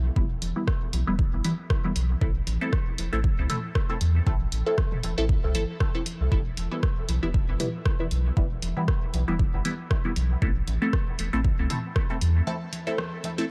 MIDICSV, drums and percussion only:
0, 0, Header, 1, 2, 480
1, 0, Start_track
1, 0, Key_signature, 1, "minor"
1, 0, Tempo, 512821
1, 153, Time_signature, 4, 2, 24, 8
1, 12644, End_track
2, 0, Start_track
2, 0, Title_t, "Drums"
2, 152, Note_on_c, 9, 36, 121
2, 153, Note_on_c, 9, 63, 83
2, 246, Note_off_c, 9, 36, 0
2, 246, Note_off_c, 9, 63, 0
2, 392, Note_on_c, 9, 42, 85
2, 393, Note_on_c, 9, 63, 81
2, 486, Note_off_c, 9, 42, 0
2, 486, Note_off_c, 9, 63, 0
2, 632, Note_on_c, 9, 36, 127
2, 632, Note_on_c, 9, 37, 77
2, 633, Note_on_c, 9, 63, 45
2, 726, Note_off_c, 9, 36, 0
2, 726, Note_off_c, 9, 37, 0
2, 726, Note_off_c, 9, 63, 0
2, 872, Note_on_c, 9, 42, 87
2, 873, Note_on_c, 9, 63, 78
2, 966, Note_off_c, 9, 42, 0
2, 966, Note_off_c, 9, 63, 0
2, 1113, Note_on_c, 9, 36, 122
2, 1113, Note_on_c, 9, 63, 82
2, 1206, Note_off_c, 9, 36, 0
2, 1206, Note_off_c, 9, 63, 0
2, 1353, Note_on_c, 9, 42, 86
2, 1353, Note_on_c, 9, 63, 46
2, 1446, Note_off_c, 9, 42, 0
2, 1446, Note_off_c, 9, 63, 0
2, 1592, Note_on_c, 9, 37, 83
2, 1593, Note_on_c, 9, 36, 127
2, 1593, Note_on_c, 9, 63, 77
2, 1686, Note_off_c, 9, 36, 0
2, 1686, Note_off_c, 9, 37, 0
2, 1687, Note_off_c, 9, 63, 0
2, 1832, Note_on_c, 9, 42, 84
2, 1833, Note_on_c, 9, 63, 82
2, 1926, Note_off_c, 9, 42, 0
2, 1926, Note_off_c, 9, 63, 0
2, 2073, Note_on_c, 9, 36, 127
2, 2166, Note_off_c, 9, 36, 0
2, 2313, Note_on_c, 9, 42, 84
2, 2313, Note_on_c, 9, 63, 84
2, 2406, Note_off_c, 9, 42, 0
2, 2406, Note_off_c, 9, 63, 0
2, 2552, Note_on_c, 9, 63, 81
2, 2553, Note_on_c, 9, 36, 127
2, 2553, Note_on_c, 9, 37, 77
2, 2646, Note_off_c, 9, 36, 0
2, 2646, Note_off_c, 9, 37, 0
2, 2646, Note_off_c, 9, 63, 0
2, 2792, Note_on_c, 9, 63, 49
2, 2793, Note_on_c, 9, 42, 89
2, 2886, Note_off_c, 9, 42, 0
2, 2886, Note_off_c, 9, 63, 0
2, 3032, Note_on_c, 9, 63, 86
2, 3033, Note_on_c, 9, 36, 124
2, 3126, Note_off_c, 9, 36, 0
2, 3126, Note_off_c, 9, 63, 0
2, 3273, Note_on_c, 9, 42, 91
2, 3273, Note_on_c, 9, 45, 93
2, 3273, Note_on_c, 9, 63, 81
2, 3366, Note_off_c, 9, 42, 0
2, 3366, Note_off_c, 9, 45, 0
2, 3366, Note_off_c, 9, 63, 0
2, 3512, Note_on_c, 9, 37, 86
2, 3513, Note_on_c, 9, 36, 121
2, 3606, Note_off_c, 9, 36, 0
2, 3606, Note_off_c, 9, 37, 0
2, 3752, Note_on_c, 9, 42, 87
2, 3753, Note_on_c, 9, 63, 82
2, 3846, Note_off_c, 9, 42, 0
2, 3846, Note_off_c, 9, 63, 0
2, 3993, Note_on_c, 9, 36, 127
2, 3993, Note_on_c, 9, 63, 83
2, 4086, Note_off_c, 9, 36, 0
2, 4086, Note_off_c, 9, 63, 0
2, 4232, Note_on_c, 9, 42, 85
2, 4232, Note_on_c, 9, 63, 45
2, 4326, Note_off_c, 9, 42, 0
2, 4326, Note_off_c, 9, 63, 0
2, 4472, Note_on_c, 9, 37, 79
2, 4473, Note_on_c, 9, 36, 122
2, 4473, Note_on_c, 9, 63, 84
2, 4566, Note_off_c, 9, 37, 0
2, 4566, Note_off_c, 9, 63, 0
2, 4567, Note_off_c, 9, 36, 0
2, 4606, Note_on_c, 9, 45, 87
2, 4700, Note_off_c, 9, 45, 0
2, 4712, Note_on_c, 9, 42, 90
2, 4713, Note_on_c, 9, 63, 79
2, 4806, Note_off_c, 9, 42, 0
2, 4807, Note_off_c, 9, 63, 0
2, 4953, Note_on_c, 9, 36, 121
2, 4953, Note_on_c, 9, 63, 47
2, 5046, Note_off_c, 9, 63, 0
2, 5047, Note_off_c, 9, 36, 0
2, 5192, Note_on_c, 9, 42, 91
2, 5192, Note_on_c, 9, 63, 82
2, 5286, Note_off_c, 9, 42, 0
2, 5286, Note_off_c, 9, 63, 0
2, 5432, Note_on_c, 9, 63, 78
2, 5433, Note_on_c, 9, 36, 127
2, 5433, Note_on_c, 9, 37, 80
2, 5526, Note_off_c, 9, 37, 0
2, 5526, Note_off_c, 9, 63, 0
2, 5527, Note_off_c, 9, 36, 0
2, 5673, Note_on_c, 9, 42, 84
2, 5673, Note_on_c, 9, 63, 48
2, 5766, Note_off_c, 9, 42, 0
2, 5766, Note_off_c, 9, 63, 0
2, 5913, Note_on_c, 9, 36, 122
2, 5913, Note_on_c, 9, 63, 79
2, 6006, Note_off_c, 9, 63, 0
2, 6007, Note_off_c, 9, 36, 0
2, 6153, Note_on_c, 9, 42, 81
2, 6153, Note_on_c, 9, 63, 45
2, 6246, Note_off_c, 9, 42, 0
2, 6247, Note_off_c, 9, 63, 0
2, 6393, Note_on_c, 9, 36, 119
2, 6393, Note_on_c, 9, 37, 74
2, 6393, Note_on_c, 9, 63, 78
2, 6486, Note_off_c, 9, 37, 0
2, 6487, Note_off_c, 9, 36, 0
2, 6487, Note_off_c, 9, 63, 0
2, 6632, Note_on_c, 9, 42, 86
2, 6632, Note_on_c, 9, 63, 78
2, 6726, Note_off_c, 9, 42, 0
2, 6726, Note_off_c, 9, 63, 0
2, 6873, Note_on_c, 9, 36, 118
2, 6873, Note_on_c, 9, 63, 46
2, 6967, Note_off_c, 9, 36, 0
2, 6967, Note_off_c, 9, 63, 0
2, 7113, Note_on_c, 9, 42, 86
2, 7113, Note_on_c, 9, 45, 88
2, 7113, Note_on_c, 9, 63, 79
2, 7206, Note_off_c, 9, 42, 0
2, 7207, Note_off_c, 9, 45, 0
2, 7207, Note_off_c, 9, 63, 0
2, 7353, Note_on_c, 9, 36, 118
2, 7353, Note_on_c, 9, 37, 75
2, 7353, Note_on_c, 9, 63, 75
2, 7446, Note_off_c, 9, 37, 0
2, 7446, Note_off_c, 9, 63, 0
2, 7447, Note_off_c, 9, 36, 0
2, 7592, Note_on_c, 9, 42, 78
2, 7593, Note_on_c, 9, 63, 46
2, 7686, Note_off_c, 9, 42, 0
2, 7687, Note_off_c, 9, 63, 0
2, 7833, Note_on_c, 9, 36, 119
2, 7833, Note_on_c, 9, 63, 75
2, 7926, Note_off_c, 9, 36, 0
2, 7927, Note_off_c, 9, 63, 0
2, 8072, Note_on_c, 9, 42, 76
2, 8073, Note_on_c, 9, 63, 74
2, 8166, Note_off_c, 9, 42, 0
2, 8166, Note_off_c, 9, 63, 0
2, 8312, Note_on_c, 9, 37, 72
2, 8313, Note_on_c, 9, 36, 119
2, 8313, Note_on_c, 9, 63, 44
2, 8406, Note_off_c, 9, 36, 0
2, 8406, Note_off_c, 9, 37, 0
2, 8406, Note_off_c, 9, 63, 0
2, 8552, Note_on_c, 9, 42, 82
2, 8552, Note_on_c, 9, 63, 79
2, 8646, Note_off_c, 9, 42, 0
2, 8646, Note_off_c, 9, 63, 0
2, 8792, Note_on_c, 9, 63, 81
2, 8793, Note_on_c, 9, 36, 113
2, 8886, Note_off_c, 9, 36, 0
2, 8886, Note_off_c, 9, 63, 0
2, 9032, Note_on_c, 9, 42, 86
2, 9033, Note_on_c, 9, 63, 44
2, 9126, Note_off_c, 9, 42, 0
2, 9126, Note_off_c, 9, 63, 0
2, 9272, Note_on_c, 9, 37, 80
2, 9272, Note_on_c, 9, 63, 74
2, 9273, Note_on_c, 9, 36, 120
2, 9366, Note_off_c, 9, 36, 0
2, 9366, Note_off_c, 9, 37, 0
2, 9366, Note_off_c, 9, 63, 0
2, 9512, Note_on_c, 9, 42, 77
2, 9512, Note_on_c, 9, 63, 77
2, 9606, Note_off_c, 9, 42, 0
2, 9606, Note_off_c, 9, 63, 0
2, 9753, Note_on_c, 9, 36, 116
2, 9753, Note_on_c, 9, 63, 44
2, 9846, Note_off_c, 9, 36, 0
2, 9846, Note_off_c, 9, 63, 0
2, 9992, Note_on_c, 9, 42, 76
2, 9992, Note_on_c, 9, 63, 76
2, 10086, Note_off_c, 9, 42, 0
2, 10086, Note_off_c, 9, 63, 0
2, 10232, Note_on_c, 9, 37, 77
2, 10232, Note_on_c, 9, 63, 76
2, 10233, Note_on_c, 9, 36, 117
2, 10326, Note_off_c, 9, 36, 0
2, 10326, Note_off_c, 9, 37, 0
2, 10326, Note_off_c, 9, 63, 0
2, 10472, Note_on_c, 9, 42, 84
2, 10472, Note_on_c, 9, 63, 44
2, 10566, Note_off_c, 9, 42, 0
2, 10566, Note_off_c, 9, 63, 0
2, 10712, Note_on_c, 9, 63, 80
2, 10713, Note_on_c, 9, 36, 108
2, 10805, Note_off_c, 9, 63, 0
2, 10806, Note_off_c, 9, 36, 0
2, 10952, Note_on_c, 9, 42, 86
2, 10952, Note_on_c, 9, 45, 92
2, 10952, Note_on_c, 9, 63, 73
2, 11045, Note_off_c, 9, 45, 0
2, 11045, Note_off_c, 9, 63, 0
2, 11046, Note_off_c, 9, 42, 0
2, 11192, Note_on_c, 9, 37, 80
2, 11192, Note_on_c, 9, 63, 42
2, 11193, Note_on_c, 9, 36, 118
2, 11286, Note_off_c, 9, 36, 0
2, 11286, Note_off_c, 9, 37, 0
2, 11286, Note_off_c, 9, 63, 0
2, 11432, Note_on_c, 9, 42, 78
2, 11432, Note_on_c, 9, 63, 78
2, 11525, Note_off_c, 9, 63, 0
2, 11526, Note_off_c, 9, 42, 0
2, 11672, Note_on_c, 9, 63, 79
2, 11766, Note_off_c, 9, 63, 0
2, 11912, Note_on_c, 9, 42, 77
2, 11912, Note_on_c, 9, 63, 43
2, 12005, Note_off_c, 9, 63, 0
2, 12006, Note_off_c, 9, 42, 0
2, 12152, Note_on_c, 9, 37, 78
2, 12152, Note_on_c, 9, 63, 74
2, 12245, Note_off_c, 9, 63, 0
2, 12246, Note_off_c, 9, 37, 0
2, 12392, Note_on_c, 9, 63, 75
2, 12393, Note_on_c, 9, 42, 82
2, 12485, Note_off_c, 9, 63, 0
2, 12486, Note_off_c, 9, 42, 0
2, 12644, End_track
0, 0, End_of_file